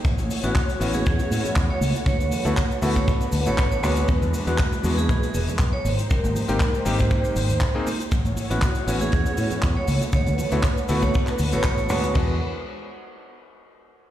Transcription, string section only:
0.05 4.04 A3 medium
0.05 2.05 E4 medium
0.05 4.05 F#4 medium
0.05 2.05 C#5 loud
2.07 5.81 D4 medium
2.07 5.81 B4 loud
4.09 5.83 G#3 medium
4.09 5.83 E4 medium
5.85 8.10 G#3 medium
5.85 8.10 D#4 medium
5.85 8.10 G4 medium
5.85 8.10 C5 medium
8.12 12.11 A3 medium
8.12 10.12 E4 medium
8.12 10.12 F#4 medium
8.12 10.12 C#5 medium
10.13 12.13 D4 medium
10.13 12.13 F#4 medium
10.13 12.13 B4 loud
12.15 12.39 G#3 medium
12.15 12.39 D4 medium
12.15 12.39 E4 medium
12.15 12.39 B4 medium

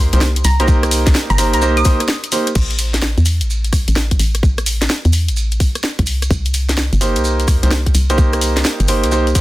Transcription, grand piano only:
0.13 0.20 A#3 medium
0.13 0.20 D#4 medium
0.13 0.20 G4 medium
0.13 0.20 C5 loud
0.60 1.36 A#3 medium
0.60 1.36 D#4 medium
0.60 1.36 G4 medium
0.60 1.36 C5 loud
1.38 1.60 A#3 loud
1.38 1.60 D#4 medium
1.38 1.60 G4 medium
1.38 1.60 C5 loud
1.62 1.76 A#3 medium
1.62 1.76 D#4 medium
1.62 1.76 G4 medium
1.62 1.76 C5 loud
1.85 1.99 A#3 medium
1.85 1.99 D#4 medium
1.85 1.99 G4 medium
1.85 1.99 C5 loud
2.32 2.46 A#3 medium
2.32 2.46 D#4 medium
2.32 2.46 G4 medium
2.32 2.46 C5 medium
7.01 7.59 A#3 medium
7.01 7.59 D#4 medium
7.01 7.59 G4 medium
7.01 7.59 C5 medium
7.63 7.70 A#3 medium
7.63 7.70 D#4 medium
7.63 7.70 G4 medium
7.63 7.70 C5 medium
8.10 8.86 A#3 medium
8.10 8.86 D#4 medium
8.10 8.86 G4 medium
8.10 8.86 C5 loud
8.88 9.10 A#3 medium
8.88 9.10 D#4 medium
8.88 9.10 G4 medium
8.88 9.10 C5 loud
9.12 9.26 A#3 medium
9.12 9.26 D#4 medium
9.12 9.26 G4 medium
9.12 9.26 C5 loud
9.35 9.41 A#3 medium
9.35 9.41 D#4 medium
9.35 9.41 G4 medium
9.35 9.41 C5 loud

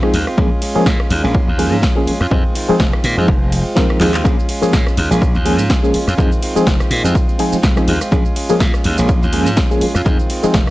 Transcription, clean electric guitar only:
0.00 0.12 D#3 medium
0.00 0.13 G#3 loud
0.00 0.13 C4 loud
0.00 0.14 F4 loud
0.13 0.27 D#3 medium
0.13 0.27 G#3 medium
0.13 0.27 C4 medium
0.13 0.26 F4 medium
0.27 0.36 G#3 medium
0.27 0.38 C4 medium
0.27 0.38 F4 medium
0.37 0.60 G#3 medium
0.61 0.85 G#3 medium
0.61 0.86 C#4 medium
0.61 0.86 F4 medium
0.86 1.09 G#3 loud
1.10 1.24 G#3 medium
1.10 1.24 C#4 medium
1.10 1.22 F4 medium
1.23 1.34 C#4 soft
1.23 1.34 F4 medium
1.34 1.48 G#3 medium
1.34 1.49 C#4 medium
1.34 1.46 F4 medium
1.48 1.82 C#4 soft
1.48 1.82 F4 medium
1.82 2.05 G#3 medium
1.82 2.06 C#4 loud
1.82 2.07 F4 loud
2.06 2.20 G#3 medium
2.06 2.21 C#4 medium
2.06 2.19 F4 medium
2.20 2.31 C#4 medium
2.20 2.31 F4 medium
2.31 2.54 D#3 medium
2.31 2.54 G#3 loud
2.31 2.55 C4 loud
2.31 2.56 F4 loud
2.55 2.78 D#3 medium
2.55 2.78 G#3 medium
2.55 2.79 C4 medium
2.55 2.79 F4 medium
2.80 3.03 C4 medium
2.80 3.04 F4 loud
3.03 3.17 D#3 medium
3.03 3.17 G#3 medium
3.03 3.16 C4 medium
3.03 3.15 F4 medium
3.17 3.26 G#3 soft
3.17 3.27 C4 medium
3.17 3.28 F4 medium
3.27 3.41 D#3 medium
3.27 3.41 C4 medium
3.41 3.75 G#3 medium
3.41 3.76 C4 medium
3.41 3.76 F4 medium
3.76 3.99 D#3 loud
3.76 4.00 G#3 medium
3.76 4.00 C4 loud
3.76 4.01 F4 loud
4.00 4.14 D#3 medium
4.00 4.14 G#3 medium
4.00 4.13 C4 medium
4.00 4.12 F4 medium
4.14 4.23 G#3 medium
4.14 4.25 C4 medium
4.14 4.25 F4 medium
4.24 4.47 G#3 medium
4.24 4.48 C#4 medium
4.24 4.49 F4 loud
4.48 4.71 G#3 medium
4.48 4.72 C#4 medium
4.48 4.73 F4 medium
4.73 4.96 G#3 medium
4.73 4.97 C#4 loud
4.73 4.98 F4 loud
4.97 5.11 G#3 medium
4.97 5.11 C#4 medium
4.97 5.09 F4 medium
5.11 5.21 C#4 soft
5.11 5.21 F4 medium
5.21 5.35 G#3 medium
5.21 5.35 C#4 medium
5.34 5.69 C#4 medium
5.34 5.70 F4 medium
5.70 5.92 G#3 medium
5.70 5.93 C#4 medium
5.70 5.94 F4 loud
5.94 6.08 G#3 medium
5.94 6.08 C#4 medium
5.94 6.06 F4 medium
6.07 6.18 C#4 medium
6.07 6.18 F4 medium
6.18 6.40 D#3 medium
6.18 6.41 G#3 loud
6.18 6.42 C4 medium
6.18 6.43 F4 loud
6.42 6.65 D#3 medium
6.42 6.65 G#3 medium
6.42 6.66 C4 medium
6.42 6.66 F4 medium
6.66 6.89 D#3 medium
6.66 6.90 C4 loud
6.66 6.91 F4 loud
6.90 7.04 D#3 medium
6.90 7.05 G#3 medium
6.90 7.04 C4 medium
6.90 7.02 F4 medium
7.04 7.14 G#3 soft
7.04 7.14 C4 medium
7.04 7.15 F4 medium
7.14 7.28 D#3 medium
7.14 7.29 G#3 medium
7.28 7.62 G#3 medium
7.28 7.62 C4 medium
7.28 7.63 F4 medium
7.63 7.85 D#3 medium
7.63 7.86 G#3 medium
7.63 7.87 C4 loud
7.63 7.87 F4 loud
7.87 8.01 D#3 medium
7.87 8.01 G#3 medium
7.87 8.00 C4 medium
7.87 7.99 F4 medium
8.01 8.10 G#3 medium
8.01 8.12 C4 medium
8.01 8.11 F4 medium
8.11 8.34 G#3 medium
8.11 8.35 C#4 medium
8.11 8.36 F4 loud
8.35 8.58 G#3 medium
8.35 8.59 C#4 medium
8.35 8.60 F4 medium
8.84 8.98 G#3 medium
8.84 8.98 C#4 medium
8.84 8.96 F4 medium
8.97 9.08 C#4 medium
8.97 9.08 F4 medium
9.08 9.22 G#3 medium
9.08 9.23 C#4 medium
9.08 9.21 F4 medium
9.22 9.56 C#4 medium
9.22 9.57 F4 medium
9.56 9.79 G#3 medium
9.56 9.80 C#4 medium
9.56 9.81 F4 medium
9.81 9.95 G#3 medium
9.81 9.95 C#4 medium
9.81 9.93 F4 medium
9.94 10.06 C#4 medium
9.94 10.05 F4 medium
10.05 10.28 D#3 medium
10.05 10.29 G#3 loud
10.05 10.29 C4 loud
10.05 10.30 F4 loud
10.29 10.52 D#3 medium
10.29 10.53 G#3 medium
10.29 10.53 C4 medium
10.29 10.54 F4 medium
10.53 10.70 D#3 medium
10.53 10.70 C4 loud
10.53 10.70 F4 loud

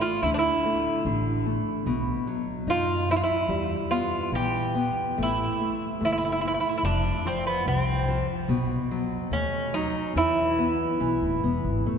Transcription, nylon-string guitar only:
0.00 0.22 A3 soft
0.24 1.05 D3 soft
0.66 1.05 A3 soft
1.06 1.45 D3 soft
1.46 1.85 A3 soft
1.87 3.45 B2 medium
2.27 2.66 F#3 soft
2.68 3.07 D#4 soft
3.09 3.48 F#3 soft
3.49 5.15 G3 medium
3.91 4.31 B3 soft
4.33 4.74 E3 soft
4.75 5.17 B3 soft
5.18 5.60 A3 soft
5.61 5.99 A3 soft
6.01 6.41 A3 soft
6.43 6.83 A3 soft
6.85 7.24 F3 soft
7.25 7.66 F3 soft
7.67 8.07 F3 medium
8.08 8.48 F3 soft
8.49 10.11 B2 medium
8.91 9.31 F#3 medium
9.32 9.72 A3 medium
9.74 10.14 F#3 medium
10.16 10.99 E3 medium
10.58 11.00 B3 soft
11.00 11.84 E3 medium
11.44 11.85 B3 soft
11.86 11.98 A3 medium

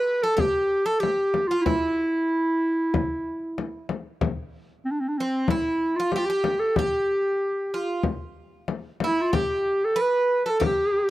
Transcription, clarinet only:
0.00 0.24 B4 loud
0.23 0.42 A4 medium
0.40 0.88 G4 medium
0.86 1.02 A4 medium
1.00 1.49 G4 medium
1.48 1.63 F4 medium
1.61 3.87 E4 medium
4.85 4.92 C4 medium
4.91 5.02 D4 medium
5.00 5.10 C4 medium
5.08 5.19 D4 medium
5.18 5.50 C4 medium
5.49 5.97 E4 medium
5.95 6.13 F4 medium
6.12 6.20 G4 medium
6.18 6.27 F4 medium
6.26 6.61 G4 medium
6.60 6.78 A4 medium
6.76 8.05 G4 medium
9.05 9.22 E4 medium
9.21 9.37 F4 medium
9.35 9.86 G4 medium
9.85 10.03 A4 medium
10.02 10.45 B4 loud
10.45 10.51 B4 medium
10.50 10.63 A4 medium
10.66 11.10 G4 medium

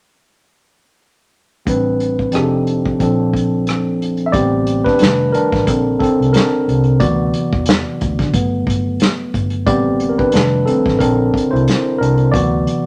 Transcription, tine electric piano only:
1.66 2.33 A2 medium
1.66 2.33 G3 medium
1.66 2.31 C4 medium
1.66 2.32 D4 medium
1.66 2.35 B4 medium
2.32 2.98 F3 medium
2.32 2.99 C4 medium
2.32 3.00 D4 medium
2.32 3.00 D#4 medium
2.32 3.01 G4 medium
2.32 2.42 G#4 medium
2.42 3.02 A4 medium
2.97 4.29 A#2 medium
2.97 4.30 F3 medium
2.97 4.31 C4 medium
3.02 4.32 D4 medium
3.02 4.32 A4 medium
4.26 4.33 E5 medium
4.32 4.79 D3 medium
4.32 4.79 G3 soft
4.32 4.80 B3 soft
4.32 4.80 C4 medium
4.32 4.82 G4 medium
4.32 4.86 D5 loud
4.84 5.00 D4 medium
4.84 5.34 B4 medium
5.00 5.46 D#3 soft
5.00 5.46 G3 soft
5.00 5.47 A3 soft
5.00 5.34 D4 medium
5.32 5.97 D4 medium
5.32 6.02 A#4 medium
5.67 6.13 D3 soft
5.67 6.00 C4 medium
5.67 5.98 A4 soft
5.99 6.16 C4 medium
5.99 6.15 A4 medium
6.33 6.97 D4 medium
6.33 7.02 A#4 medium
7.00 7.96 C3 soft
7.00 7.97 E3 soft
7.00 7.97 F#3 soft
7.00 7.97 B3 medium
7.00 8.30 F#4 medium
7.00 8.29 D5 medium
8.33 9.63 F#3 medium
8.33 9.63 A3 soft
8.33 9.63 B3 medium
9.66 10.30 D3 medium
9.66 10.30 G3 soft
9.66 10.30 B3 soft
9.66 10.30 C4 medium
9.66 10.08 G4 medium
9.66 10.12 D5 medium
10.09 10.18 A#4 medium
10.18 10.33 D4 medium
10.18 10.68 B4 medium
10.33 10.96 D#3 medium
10.33 10.97 G3 soft
10.33 10.97 A3 soft
10.33 10.97 D4 medium
10.66 10.98 C4 medium
10.66 10.97 A4 medium
10.99 12.29 D3 medium
10.99 12.30 C4 medium
10.99 11.49 D4 medium
10.99 12.29 A4 soft
10.99 11.53 A#4 medium
11.51 11.97 E4 medium
11.51 12.01 C5 medium
11.98 12.31 D4 medium
11.98 12.34 A#4 medium
12.32 12.86 C3 soft
12.32 12.86 E3 soft
12.32 12.86 F#3 soft
12.32 12.86 B3 medium
12.32 12.86 F#4 medium
12.32 12.86 D5 medium

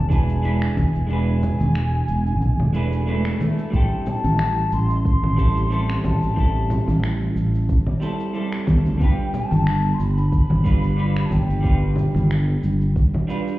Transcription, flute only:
0.00 0.14 A5 loud
0.13 1.10 G#5 loud
1.11 3.04 G#5 loud
3.75 4.10 G5 medium
4.09 4.75 A5 loud
4.74 5.06 C6 loud
5.06 6.01 C6 loud
6.05 6.66 A5 medium
8.96 9.04 A5 medium
9.02 9.36 G5 loud
9.35 9.95 A5 loud
9.94 10.02 C6 medium
10.01 10.33 B5 medium
10.34 11.27 B5 loud
11.26 11.34 A5 medium
11.32 11.98 G5 medium

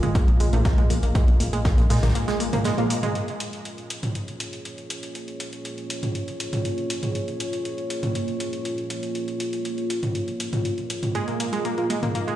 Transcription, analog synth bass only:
0.03 0.12 G#1 medium
0.28 0.37 A#1 medium
0.40 0.50 A#1 medium
0.53 0.62 A#1 medium
0.78 0.87 A#1 medium
0.90 1.00 A#1 loud
1.03 1.12 A#1 medium
1.28 1.38 A#1 medium
1.40 1.50 A#1 loud
1.53 1.62 A#1 medium
1.78 1.88 A#1 loud
1.90 2.00 A#2 medium
2.03 2.13 A#1 medium

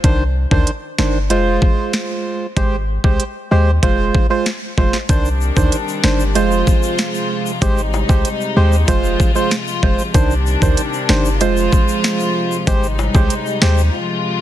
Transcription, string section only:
5.09 10.11 C3 medium
5.09 6.34 D#3 medium
5.09 6.34 G3 medium
5.09 6.34 D4 medium
6.35 7.61 F3 medium
6.35 7.61 G#3 medium
6.35 7.60 F4 medium
7.62 8.87 G3 medium
7.62 10.12 G#3 medium
7.62 8.87 D#4 medium
8.88 10.13 F3 medium
8.88 10.13 F4 medium
10.15 13.90 C3 medium
10.15 11.40 D#3 medium
10.15 11.40 G3 medium
10.15 11.40 D4 medium
11.41 12.66 F3 medium
11.41 12.66 G#3 medium
11.41 12.66 F4 medium
12.67 13.92 G3 medium
12.67 13.92 G#3 medium
12.67 13.92 D#4 medium
13.94 14.41 C3 medium
13.94 14.41 F3 medium
13.94 14.41 G#3 medium
13.94 14.41 F4 medium

